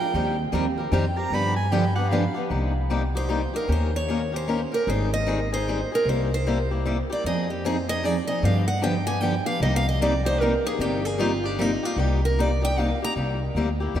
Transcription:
Already playing: soprano saxophone G5
0.00 steel-string acoustic guitar D4 F4 A#4
0.14 upright bass D#2, steel-string acoustic guitar D#3 G3 C4 G4 A#4
0.52 upright bass D#2, steel-string acoustic guitar D#3 G3 C4 G4 A#4
0.77 steel-string acoustic guitar C4 G4 A#4
0.91 upright bass F2, steel-string acoustic guitar D#3 G3 C4 G4 A#4, soprano saxophone G5
1.16 steel-string acoustic guitar C4 G4 A#4, soprano saxophone A#5
1.30 upright bass G2, steel-string acoustic guitar D3 F3 B3 D4
1.34 steel-string acoustic guitar G4, soprano saxophone B5
1.56 soprano saxophone G#5
1.71 steel-string acoustic guitar D3 F3 B3 D4 G4, soprano saxophone G5
1.95 steel-string acoustic guitar B3 D4 G4, soprano saxophone F#5
2.09 steel-string acoustic guitar D3 F3 B3 D4 G4, soprano saxophone F5
2.34 steel-string acoustic guitar B3 D4 G4
2.50 upright bass C2, steel-string acoustic guitar C3 G3 A#3 D#4 G4
2.90 steel-string acoustic guitar C3 G3 A#3 D#4 G4
3.15 steel-string acoustic guitar A#3 D#4 G4 C5
3.29 steel-string acoustic guitar C3 G3 A#3 D#4 G4
3.54 steel-string acoustic guitar A#3 D#4 G4 A#4
3.67 upright bass D#2, steel-string acoustic guitar D#3 A#3 C#4 G4 A#4
3.72 steel-string acoustic guitar C5
3.96 steel-string acoustic guitar C#5
4.08 steel-string acoustic guitar D#3 A#3 C#4 G4 A#4
4.32 steel-string acoustic guitar C#4 G4 A#4
4.36 steel-string acoustic guitar C5
4.48 steel-string acoustic guitar D#3 A#3 C#4 G4 A#4
4.72 steel-string acoustic guitar C#4 G4 A#4
4.87 upright bass G#1, steel-string acoustic guitar D#3 G3 C4 D#4 G#4 C5
5.14 steel-string acoustic guitar D#5
5.27 steel-string acoustic guitar D#3 G3 C4 D#4 G#4
5.52 steel-string acoustic guitar C4 D#4 G#4 C5
5.68 steel-string acoustic guitar D#3 G3 C4 D#4 G#4
5.92 steel-string acoustic guitar C4 D#4 G#4 A#4
6.05 upright bass C2, steel-string acoustic guitar C3 G3 A#3 E4 G4 C5
6.34 steel-string acoustic guitar C5
6.46 steel-string acoustic guitar C3 G3 A#3 E4 G4
6.71 steel-string acoustic guitar A#3 E4 G4
6.86 steel-string acoustic guitar C3 G3 A#3 E4 G4
7.10 steel-string acoustic guitar A#3 E4 G4 D5
7.24 upright bass F2, steel-string acoustic guitar F3 C4 D#4 G#4 D#5
7.50 steel-string acoustic guitar G4
7.65 steel-string acoustic guitar F3 C4 D#4 G#4 C5
7.88 steel-string acoustic guitar C4 D#4 G#4 D#5
8.03 steel-string acoustic guitar F3 C4 D#4 G#4 D5
8.27 steel-string acoustic guitar C4 D#4 G#4 D#5
8.43 upright bass G2, steel-string acoustic guitar D3 F3 B3 D4 G4 F5
8.68 steel-string acoustic guitar F#5
8.82 steel-string acoustic guitar D3 F3 B3 D4 G4 G5
9.07 steel-string acoustic guitar B3 D4 G4 G#5
9.21 steel-string acoustic guitar D3 F3 B3 D4 G4 G5
9.46 steel-string acoustic guitar B3 D4 G4 F5
9.60 upright bass C2, steel-string acoustic guitar C3 G3 A#3 D#4 G4 D#5
9.76 steel-string acoustic guitar F5
9.89 steel-string acoustic guitar D#5
10.01 steel-string acoustic guitar C3 G3 A#3 D#4 G4 D5
10.25 steel-string acoustic guitar A#3 D#4 G4 C5
10.41 steel-string acoustic guitar C3 G3 A#3 D#4 G4 A#4
10.65 steel-string acoustic guitar A#3 D#4 G4 G#4
10.79 upright bass G1, steel-string acoustic guitar C3 G3 A#3 D#4 G4
11.05 steel-string acoustic guitar G#4
11.18 steel-string acoustic guitar C3 G3 A#3 D#4 F4 G4
11.43 steel-string acoustic guitar A#3 D4 D#4 G4
11.59 steel-string acoustic guitar C3 G3 A#3 D#4 G4
11.83 steel-string acoustic guitar A#3 D#4 F4 G4
11.96 upright bass C2, steel-string acoustic guitar C3 G3 A#3 D#4 G4
12.25 steel-string acoustic guitar A#4
12.39 steel-string acoustic guitar C3 G3 A#3 D#4 G4 D5
12.62 steel-string acoustic guitar A#3 D#4 G4 G5
12.77 steel-string acoustic guitar C3 G3 A#3 D#4 G4 F5
13.02 steel-string acoustic guitar A#3 D#4 G4 A#5
13.16 upright bass C2, steel-string acoustic guitar C3 G3 A#3 E4 G4
13.55 upright bass D2, steel-string acoustic guitar C3 G3 A#3 E4 G4
13.80 steel-string acoustic guitar A#3 E4 G4
13.94 upright bass E2, steel-string acoustic guitar C3 G3 A#3 E4 G4

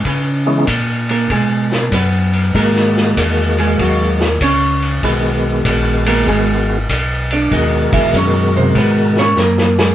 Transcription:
0.05 tonewheel organ C#3, hollow-body jazz guitar C#4 B4, kick, ride
0.46 tonewheel organ E3 G#3 B3 C#4 D#4
0.67 tonewheel organ A#2, kick, hi-hat pedal, ride
1.09 hollow-body jazz guitar A#3 A#4, ride
1.29 tonewheel organ B2, hollow-body jazz guitar G#3 G#4, kick, ride
1.72 snare
1.92 tonewheel organ F#2, hollow-body jazz guitar B3 B4, kick, hi-hat pedal, ride
2.33 ride
2.54 tonewheel organ G#2 D#3 G#3 A#3 F#4, hollow-body jazz guitar A#3 A#4, kick, ride
2.76 snare
2.97 snare
3.16 tonewheel organ E2, kick, hi-hat pedal, ride
3.58 hollow-body jazz guitar G#3 G#4, ride
3.78 tonewheel organ D#2, hollow-body jazz guitar F#3 F#4, kick, ride
4.21 snare
4.40 tonewheel organ C#2, hollow-body jazz guitar C#4 C#5, kick, hi-hat pedal, ride
4.82 ride
5.03 tonewheel organ B1 D#3 G#3 B3 F#4, hollow-body jazz guitar B3 B4, kick, ride
5.65 tonewheel organ A#1, kick, hi-hat pedal, ride
6.06 hollow-body jazz guitar A#3 A#4, ride
6.27 tonewheel organ G#1, hollow-body jazz guitar G#3 G#4, kick
6.89 tonewheel organ B1, kick, hi-hat pedal, ride
7.31 hollow-body jazz guitar D4 D5, ride
7.51 tonewheel organ D#2 B2 D#3 G#3 F#4 A#4, hollow-body jazz guitar D#4 D#5, kick, ride
7.92 tonewheel organ D#2, hollow-body jazz guitar E3 E5, kick, ride
8.13 tonewheel organ F#2, hollow-body jazz guitar C#4 C#5, kick, hi-hat pedal
8.57 hollow-body jazz guitar C3 C5
8.75 tonewheel organ G#2, hollow-body jazz guitar B3 B4, kick, ride
9.17 hollow-body jazz guitar C#4 C#5, snare
9.37 tonewheel organ F#2, hollow-body jazz guitar A#3 A#4, snare, hi-hat pedal
9.58 snare
9.79 hollow-body jazz guitar G#3 G#4, snare

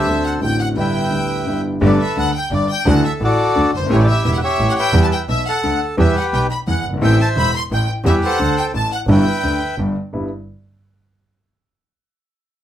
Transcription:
Already playing: bandoneon A4 C5 E5, violin section E5
0.05 grand piano D2 D3 A3 C4 F#4, double bass D2
0.25 violin section F#5, bandoneon F#5
0.39 double bass A1, grand piano A1 A2 D3 A3 C4, violin section G5
0.44 grand piano F#4, bandoneon G5
0.60 violin section F#5, bandoneon F#5
0.75 grand piano G1 G2 D3 G3 B3, violin section G5
0.79 grand piano E4, bandoneon B4 E5 G5
1.11 grand piano D2 D3 G3 B3 E4
1.45 grand piano G1 G2 D3 G3 B3 E4
1.81 grand piano G1 G2 D3 A3 B3 G4, double bass G1, bandoneon A4 B4 D5, violin section D5
2.01 violin section E5, bandoneon E5
2.16 double bass D2, grand piano D2 D3, violin section F#5, bandoneon F#5
2.35 violin section G5, bandoneon G5
2.51 double bass G1, grand piano G1 G2, violin section D5, bandoneon D5
2.70 violin section G5, bandoneon G5
2.85 double bass D2, grand piano D2 D3 E3 A3 D4 F#4, violin section F#5
2.90 bandoneon A4 F#5
3.05 violin section E5, bandoneon E5
3.20 grand piano A1 A2, double bass A1, bandoneon F#4 A4, violin section D5
3.25 bandoneon D5
3.56 grand piano D2 D3, double bass D2
3.72 double bass G1, violin section C5
3.77 grand piano F#1, bandoneon C5
3.82 grand piano G1
3.86 grand piano G#1 A1 A2 E3 A3, double bass A1
3.90 grand piano C#4 G4, bandoneon E4 G4 C#5, violin section C#5
4.00 violin section D5, bandoneon D5
4.07 violin section E5
4.12 bandoneon E5
4.24 double bass E1, grand piano E1 E2, violin section E5
4.28 bandoneon E5
4.34 violin section F#5
4.38 bandoneon F#5
4.43 bandoneon G4 C#5 E5, violin section E5
4.59 double bass A1, grand piano A1 A2
4.70 violin section F#5, bandoneon F#5
4.78 bandoneon B4 E5 G5, violin section G5
4.93 double bass E2, grand piano E2 E3 G3 B3 G4
5.04 violin section A5, bandoneon A5
5.13 violin section G5, bandoneon G5
5.28 double bass B1, grand piano B1 B2, violin section E5, bandoneon E5
5.47 bandoneon A4 F#5, violin section F#5
5.63 grand piano D2 D3, double bass D2
5.97 grand piano E2 E3 G3 B3 G4, double bass E2, bandoneon G4 B4 E5, violin section E5
6.17 violin section F#5, bandoneon F#5
6.33 double bass B1, grand piano B1 B2, violin section G5, bandoneon G5
6.51 violin section B5, bandoneon B5
6.67 double bass E2, grand piano E2 E3, violin section F#5
6.71 bandoneon F#5
6.84 double bass G1
6.89 grand piano F#1
6.93 grand piano G1
6.97 grand piano G#1 E3, double bass A1
7.01 grand piano A1 A2 A3 C4 A4, bandoneon C5 E5 G5, violin section G5
7.21 violin section A5, bandoneon A5
7.36 grand piano E1 E2, double bass E1, violin section B5, bandoneon B5
7.56 violin section C6, bandoneon C6
7.71 double bass A1, grand piano A1 A2, violin section G5, bandoneon G5
8.04 double bass E2, grand piano E2 E3 G3 B3 G4, violin section E5
8.08 bandoneon G4 B4 E5
8.24 bandoneon A4 C5 F#5, violin section F#5
8.39 double bass D2, grand piano D2 D3
8.57 violin section G5, bandoneon G5
8.73 double bass A1, grand piano A1 A2, violin section A5, bandoneon A5
8.92 violin section F#5, bandoneon F#5
9.07 double bass G1, grand piano G1 G2 D3 G3 B3 E4, violin section G5
9.11 bandoneon B4 E5 G5
9.43 double bass D2, grand piano D2 D3
9.78 double bass G1, grand piano G1 G2
10.13 double bass G1, grand piano G2 G3 B3 E4

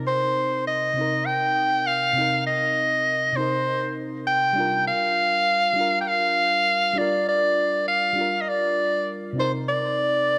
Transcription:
Already playing: fm electric piano C3 C4 D#4 A#4
0.07 soprano saxophone C5
0.67 soprano saxophone D#5
0.94 fm electric piano C3 C4
0.99 fm electric piano D#4 A#4
1.26 soprano saxophone G5
1.87 soprano saxophone F5
2.13 fm electric piano C3 C4
2.18 fm electric piano D#4 A#4
2.47 soprano saxophone D#5
3.32 fm electric piano C3 C4, soprano saxophone C5
3.38 fm electric piano D#4 A#4
4.27 soprano saxophone G5
4.53 fm electric piano G3 D4
4.58 fm electric piano F4 A#4
4.88 soprano saxophone F5
5.73 fm electric piano G3 D4
5.78 fm electric piano F4 A#4
6.01 soprano saxophone G5
6.08 soprano saxophone F5
6.93 fm electric piano G3 D4
6.98 fm electric piano F4 A#4, soprano saxophone D5
7.29 soprano saxophone D5
7.88 soprano saxophone F5
8.13 fm electric piano G3 D4
8.18 fm electric piano F4 A#4
8.41 soprano saxophone D#5
8.49 soprano saxophone D5
9.33 fm electric piano C3 C4
9.38 fm electric piano D#4 A#4, soprano saxophone C5
9.69 soprano saxophone D5

